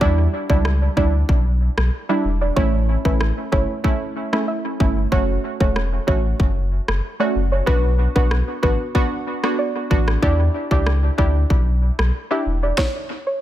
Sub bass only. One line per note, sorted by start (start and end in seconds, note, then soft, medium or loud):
0.01 0.27 E2 loud
0.50 0.88 C#2 medium
0.97 1.23 D2 medium
1.29 1.69 B1 medium
1.78 1.90 B1 medium
2.25 2.51 E1 medium
2.57 2.97 A1 loud
3.05 3.32 A1 loud
3.52 3.66 G1 loud
4.80 5.06 G1 medium
5.12 5.38 F#1 loud
5.60 5.99 E1 medium
6.08 6.34 A1 medium
6.40 6.80 F#1 medium
6.88 7.01 F#1 medium
7.35 7.62 F#1 loud
7.67 8.07 B1 loud
8.16 8.42 B1 loud
8.63 8.77 A1 loud
9.91 10.17 A1 loud
10.23 10.49 E2 loud
10.71 11.10 C#2 medium
11.18 11.45 D2 medium
11.50 11.90 B1 medium
11.99 12.11 B1 medium
12.46 12.72 E1 medium